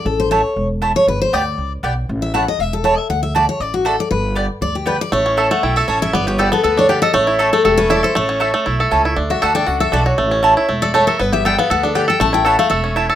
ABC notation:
X:1
M:4/4
L:1/8
Q:"Swing" 1/4=237
K:Amix
V:1 name="Steel-string acoustic guitar"
A =c ^c3 z2 c | B =c d3 z3 | z e f ^d e A c e | f e d c d F A d |
B2 z2 d G B d | c3 f g e c e | d c B A B c d ^d | c3 A G B d =c |
c4 z4 | z e f g f e d c- | c4 z d c _B | B e g =f ^f A d g |
a g f =f e2 z2 |]
V:2 name="Mandolin"
z2 [A,Eca] z3 [A,Eca] z | z2 [B,Gdg] z3 [B,Gdg] z | z2 [A,Eca] z3 [A,Eca] z | z2 [A,Fda] z3 [A,Fda] z |
z2 [B,Gdg] z3 [B,Gdg] z | z2 [A,Eca] z3 [A,Eca] z | z2 [B,Gdg] z3 [B,Gdg] z | z2 [A,Eca] z3 [A,Eca] z |
z2 [A,Eca] z3 [A,Eca] z | z2 [A,Fda] z3 [A,Fda] z | z2 [A,Eca] z3 [A,Eca] z | z2 [B,Gdg] z3 [B,Gdg] z |
z2 [A,Eca] z3 [A,Eca] z |]
V:3 name="Five-string banjo"
z8 | z8 | z8 | z8 |
z8 | A, C A A, E A C E | B, G A B, A D G A | A, E A A, A C E A |
A, C A A, E A C E | D F A D F A D F | A, C A, E A, A A, A | B, G A B, A D G A |
A, E A A, A C E A |]
V:4 name="Upright bass" clef=bass
A,,,4 E,,,4 | G,,,2 D,,2 C,,2 B,,,2 | A,,,4 E,,,4 | D,,4 A,,,4 |
G,,,4 D,,4 | A,,,4 B,,,2 A,,,2 | G,,,4 D,,4 | A,,,4 E,,,4 |
A,,,4 B,,,2 C,,2 | D,,2 D,,2 C,,2 B,,,2 | A,,,4 E,,,4 | G,,,4 D,,4 |
A,,,4 E,,,4 |]